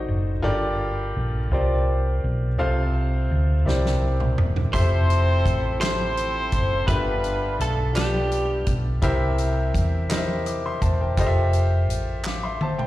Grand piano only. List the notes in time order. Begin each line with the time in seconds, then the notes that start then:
Already playing: D#4 F#4 A4 C5 D5 D#5
0.42 G2 F4 G4 A4 A#4 D5
1.52 C4 F4 G4 A#4 C5 D5
2.58 C3 C4 F4 A4 C5 F5
3.66 C3 E4 G4 A#4 C5 D5
4.73 F3 G4 A4 C5 E5
5.79 F3 G4 A4 C5 E5
6.87 G2 F4 G4 A4 A#4 E5
6.95 B4
7.93 F4 G4 A4 B4 D5
9.02 C3 E4 G4 A#4 C5 E5
10.09 E4 G4 A#4 C5 D#5
10.17 E5
10.46 D6
10.66 E5 C6
10.82 C5 A5
11.01 A#4 G5
11.17 F4 G4 A4 C5 D#5
11.27 E5
12.27 F5 D6
12.43 E5 C6
12.62 C5 A5
12.78 G5